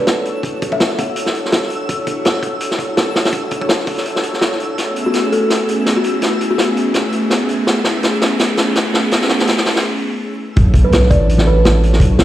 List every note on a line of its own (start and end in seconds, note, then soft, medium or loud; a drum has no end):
0.00 0.42 D4 medium
0.00 0.42 E4 medium
0.00 0.42 F#4 medium
0.00 0.42 A4 medium
0.00 0.41 B4 medium
0.00 0.42 C#5 loud
0.00 9.84 E6 medium
0.00 riser medium
0.07 snare loud
0.07 closed hi-hat medium
0.25 closed hi-hat medium
0.43 1.14 D4 loud
0.43 1.14 E4 medium
0.43 1.14 F#4 medium
0.43 1.14 A4 loud
0.43 1.14 C#5 loud
0.43 kick loud
0.43 closed hi-hat medium
0.62 kick loud
0.62 closed hi-hat medium
0.72 0.94 E5 medium
0.72 kick loud
0.80 snare loud
0.80 closed hi-hat medium
0.90 snare soft
0.98 1.35 F#5 medium
0.98 kick loud
0.98 closed hi-hat medium
1.16 1.87 D4 medium
1.16 1.87 E4 medium
1.16 1.87 F#4 medium
1.16 1.87 A4 medium
1.16 1.87 C#5 loud
1.16 closed hi-hat medium
1.26 snare medium
1.35 closed hi-hat medium
1.45 snare soft
1.52 snare loud
1.52 closed hi-hat medium
1.62 snare soft
1.70 closed hi-hat medium
1.89 2.59 D4 loud
1.89 2.59 E4 loud
1.89 2.59 F#4 loud
1.89 2.59 A4 loud
1.89 2.59 C#5 loud
1.89 kick loud
1.89 closed hi-hat medium
2.07 kick medium
2.07 closed hi-hat medium
2.25 snare loud
2.25 closed hi-hat medium
2.34 snare medium
2.43 kick medium
2.43 closed hi-hat medium
2.60 3.31 D4 medium
2.60 3.32 E4 medium
2.60 3.31 F#4 medium
2.60 3.31 A4 medium
2.60 3.31 C#5 loud
2.60 closed hi-hat loud
2.71 snare medium
2.79 kick medium
2.79 closed hi-hat medium
2.97 snare loud
2.97 closed hi-hat medium
3.15 snare loud
3.15 closed hi-hat medium
3.25 snare loud
3.25 closed hi-hat medium
3.33 4.04 D4 loud
3.33 4.04 E4 medium
3.33 4.04 F#4 loud
3.33 4.04 A4 loud
3.33 4.04 C#5 loud
3.33 kick loud
3.33 closed hi-hat medium
3.51 kick loud
3.51 closed hi-hat medium
3.61 kick loud
3.69 snare loud
3.69 closed hi-hat medium
3.80 snare soft
3.87 kick medium
3.87 open hi-hat medium
3.97 snare soft
4.05 4.76 D4 loud
4.05 4.76 E4 medium
4.05 4.76 F#4 medium
4.05 4.76 A4 medium
4.05 4.76 C#5 loud
4.05 closed hi-hat medium
4.16 snare medium
4.23 closed hi-hat medium
4.33 snare soft
4.41 snare loud
4.41 closed hi-hat medium
4.52 snare soft
4.60 closed hi-hat medium
4.77 5.48 A3 loud
4.77 5.48 B3 loud
4.77 5.48 C#4 medium
4.77 5.48 E4 loud
4.77 5.48 G#4 loud
4.77 snare soft
4.77 closed hi-hat medium
4.96 closed hi-hat medium
5.06 5.31 F#4 medium
5.14 snare soft
5.14 closed hi-hat medium
5.32 5.54 A4 medium
5.32 closed hi-hat medium
5.50 6.21 A3 medium
5.50 6.20 B3 medium
5.50 6.21 C#4 medium
5.50 6.21 E4 medium
5.50 6.21 G#4 loud
5.50 snare medium
5.50 closed hi-hat medium
5.68 closed hi-hat medium
5.86 snare medium
5.86 closed hi-hat medium
5.96 6.18 F#4 medium
6.04 closed hi-hat medium
6.22 6.93 A3 loud
6.22 6.93 B3 loud
6.22 6.93 C#4 loud
6.22 6.44 E4 medium
6.22 6.93 E4 loud
6.22 6.93 G#4 loud
6.22 snare medium
6.22 closed hi-hat medium
6.41 closed hi-hat medium
6.50 6.77 F#4 medium
6.58 snare medium
6.58 closed hi-hat loud
6.77 closed hi-hat medium
6.94 7.65 A3 loud
6.94 7.65 B3 medium
6.94 7.65 C#4 medium
6.94 7.65 E4 medium
6.94 7.65 G#4 loud
6.94 snare medium
6.94 closed hi-hat medium
7.12 closed hi-hat medium
7.30 snare medium
7.30 closed hi-hat medium
7.49 closed hi-hat medium
7.67 8.37 A3 loud
7.67 8.37 B3 loud
7.67 8.37 C#4 medium
7.67 8.37 E4 loud
7.67 8.37 G#4 loud
7.67 snare medium
7.67 closed hi-hat medium
7.84 snare medium
7.84 closed hi-hat medium
8.03 snare medium
8.03 closed hi-hat medium
8.21 snare medium
8.21 closed hi-hat medium
8.39 9.10 A3 loud
8.39 9.10 B3 medium
8.39 9.10 C#4 medium
8.39 9.10 E4 medium
8.39 9.10 G#4 loud
8.39 snare medium
8.39 closed hi-hat loud
8.57 snare medium
8.57 closed hi-hat medium
8.75 snare medium
8.75 closed hi-hat medium
8.94 snare medium
9.11 9.82 A3 loud
9.11 9.82 B3 loud
9.11 9.82 C#4 loud
9.11 9.82 E4 loud
9.11 9.82 G#4 loud
9.11 snare loud
9.11 closed hi-hat medium
9.22 snare medium
9.29 snare medium
9.39 snare medium
9.47 snare loud
9.47 closed hi-hat loud
9.57 snare medium
9.66 snare loud
9.66 open hi-hat medium
9.76 snare loud
10.56 11.09 B1 loud
10.56 11.27 D4 loud
10.56 11.27 E4 loud
10.56 11.27 F#4 loud
10.56 11.27 A4 loud
10.56 11.27 C#5 loud
10.56 kick loud
10.56 closed hi-hat medium
10.56 impact medium
10.74 kick loud
10.74 closed hi-hat medium
10.84 11.09 B4 medium
10.92 snare loud
10.92 closed hi-hat loud
11.03 snare medium
11.10 11.99 A1 medium
11.10 11.33 D5 medium
11.10 kick loud
11.10 closed hi-hat medium
11.28 11.99 D4 loud
11.28 11.99 E4 medium
11.28 11.99 F#4 medium
11.28 11.99 A4 medium
11.28 11.99 C#5 loud
11.28 closed hi-hat medium
11.38 snare medium
11.47 11.98 B4 loud
11.65 snare loud
11.65 closed hi-hat medium
11.83 closed hi-hat medium
11.93 snare medium
12.00 12.24 B1 loud
12.00 12.24 D4 loud
12.00 12.24 E4 loud
12.00 12.24 F#4 loud
12.00 12.24 A4 loud
12.00 12.24 C#5 loud
12.00 kick loud
12.00 closed hi-hat medium
12.19 snare loud
12.19 closed hi-hat medium